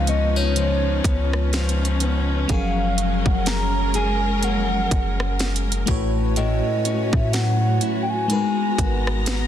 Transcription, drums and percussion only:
0.07 closed hi-hat medium
0.56 closed hi-hat medium
1.04 kick medium
1.04 closed hi-hat medium
1.33 cross-stick loud
1.53 snare loud
1.53 closed hi-hat soft
1.69 closed hi-hat medium
1.85 closed hi-hat medium
2.00 closed hi-hat medium
2.49 kick loud
2.49 closed hi-hat medium
2.98 closed hi-hat medium
3.26 kick medium
3.46 snare loud
3.46 closed hi-hat medium
3.94 closed hi-hat medium
4.43 closed hi-hat medium
4.91 kick medium
4.91 closed hi-hat medium
5.20 cross-stick loud
5.39 snare loud
5.39 closed hi-hat soft
5.56 closed hi-hat medium
5.72 closed hi-hat medium
5.87 kick loud
5.87 closed hi-hat medium
6.36 closed hi-hat medium
6.85 closed hi-hat medium
7.13 kick medium
7.13 cross-stick medium
7.33 snare loud
7.33 closed hi-hat medium
7.81 closed hi-hat medium
8.30 closed hi-hat medium
8.78 kick medium
8.78 closed hi-hat medium
9.07 cross-stick loud
9.26 snare loud
9.26 closed hi-hat medium

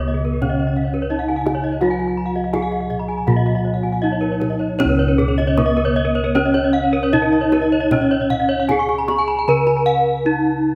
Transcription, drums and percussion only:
0.25 kendang slap soft
0.42 kendang low medium
0.76 kendang low soft
0.94 kendang slap soft
1.29 kendang slap soft
1.47 kendang high soft
1.81 kendang high soft
1.99 kendang slap soft
2.35 kendang slap soft
2.54 kendang high soft
2.54 kendang low soft
2.72 kendang slap soft
2.90 kendang low soft
3.09 kendang slap soft
3.28 kendang low soft
3.46 kendang slap soft
3.84 kendang slap soft
4.22 kendang slap soft
4.41 kendang high soft
4.41 kendang low soft
4.61 kendang slap soft
4.80 kendang high medium
4.80 kendang low medium
5.19 kendang low medium
5.39 kendang slap soft
5.57 kendang high medium
5.57 kendang low medium
5.77 kendang slap soft
6.36 kendang high medium
6.54 kendang slap soft
7.13 kendang low medium
7.52 kendang high medium
7.91 kendang low medium
8.30 kendang low medium
8.69 kendang high medium
8.69 kendang low medium
8.88 kendang slap soft
9.08 kendang high medium
9.67 kendang slap soft

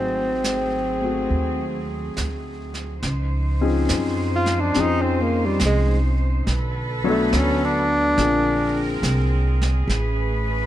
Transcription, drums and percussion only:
0.44 snare soft
0.44 hi-hat pedal medium
1.30 brush sweep soft
2.17 snare soft
2.17 hi-hat pedal soft
2.74 snare soft
3.03 brush sweep soft
3.03 snare soft
3.89 snare medium
3.89 hi-hat pedal medium
4.46 snare soft
4.74 brush sweep soft
4.74 snare soft
5.60 snare medium
5.60 hi-hat pedal medium
6.47 brush sweep soft
6.47 snare soft
7.33 snare medium
7.33 hi-hat pedal medium
8.18 brush sweep soft
8.18 snare soft
9.03 snare medium
9.03 hi-hat pedal medium
9.62 snare soft
9.89 brush sweep soft
9.89 snare soft

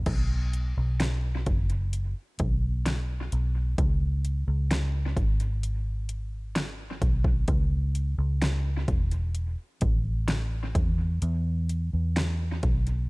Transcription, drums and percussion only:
0.06 kick loud
0.06 crash medium
0.53 closed hi-hat medium
1.00 snare loud
1.00 closed hi-hat medium
1.46 kick medium
1.46 closed hi-hat soft
1.70 closed hi-hat soft
1.93 closed hi-hat medium
2.39 kick medium
2.39 closed hi-hat medium
2.86 snare medium
2.86 closed hi-hat medium
3.32 closed hi-hat medium
3.78 kick loud
3.78 closed hi-hat medium
4.25 closed hi-hat medium
4.71 snare loud
4.71 closed hi-hat medium
5.17 kick medium
5.17 closed hi-hat medium
5.40 closed hi-hat soft
5.63 closed hi-hat medium
6.09 closed hi-hat medium
6.56 snare loud
6.56 closed hi-hat medium
7.02 kick medium
7.02 closed hi-hat medium
7.24 kick medium
7.48 kick loud
7.48 closed hi-hat medium
7.95 closed hi-hat medium
8.42 snare loud
8.42 closed hi-hat medium
8.88 kick medium
8.88 closed hi-hat medium
9.11 closed hi-hat soft
9.35 closed hi-hat medium
9.81 kick medium
9.81 closed hi-hat medium
10.28 snare loud
10.28 closed hi-hat medium
10.75 kick loud
10.75 closed hi-hat medium
11.22 closed hi-hat medium
11.69 closed hi-hat medium
12.16 snare loud
12.16 closed hi-hat medium
12.63 kick medium
12.63 closed hi-hat medium
12.87 closed hi-hat soft

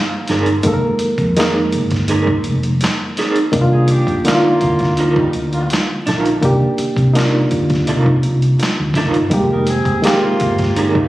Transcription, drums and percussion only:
0.28 snare soft
0.28 closed hi-hat medium
0.46 closed hi-hat soft
0.63 kick loud
0.63 closed hi-hat medium
0.99 closed hi-hat medium
1.18 kick medium
1.18 closed hi-hat soft
1.37 snare loud
1.37 closed hi-hat medium
1.41 clap medium
1.72 closed hi-hat medium
1.91 kick medium
1.91 snare soft
1.91 closed hi-hat soft
2.08 closed hi-hat medium
2.27 kick medium
2.44 closed hi-hat medium
2.63 closed hi-hat soft
2.81 snare medium
2.81 closed hi-hat medium
2.85 clap medium
3.17 snare soft
3.17 closed hi-hat medium
3.36 closed hi-hat soft
3.53 kick loud
3.53 closed hi-hat medium
3.88 closed hi-hat medium
4.07 kick medium
4.07 closed hi-hat soft
4.25 snare loud
4.25 closed hi-hat medium
4.29 clap medium
4.61 kick medium
4.61 closed hi-hat medium
4.79 kick medium
4.79 snare soft
4.79 closed hi-hat soft
4.97 closed hi-hat medium
5.16 kick medium
5.33 closed hi-hat medium
5.53 closed hi-hat soft
5.70 snare loud
5.70 closed hi-hat medium
5.74 clap medium
6.07 snare soft
6.07 closed hi-hat medium
6.26 closed hi-hat soft
6.42 kick loud
6.42 closed hi-hat medium
6.78 closed hi-hat medium
6.96 kick medium
6.96 closed hi-hat soft
7.15 snare loud
7.15 closed hi-hat medium
7.20 clap medium
7.51 kick medium
7.51 closed hi-hat medium
7.70 kick medium
7.70 snare soft
7.70 closed hi-hat soft
7.87 closed hi-hat medium
8.06 kick medium
8.23 closed hi-hat medium
8.42 closed hi-hat soft
8.60 snare medium
8.60 closed hi-hat medium
8.64 clap medium
8.94 kick medium
8.94 closed hi-hat medium
8.98 snare soft
9.14 closed hi-hat soft
9.31 kick loud
9.31 closed hi-hat medium
9.67 closed hi-hat medium
9.85 kick medium
9.85 closed hi-hat soft
10.04 snare loud
10.04 closed hi-hat medium
10.08 clap medium
10.40 kick medium
10.40 closed hi-hat medium
10.58 kick medium
10.58 snare soft
10.58 closed hi-hat soft
10.76 closed hi-hat medium
10.95 kick medium

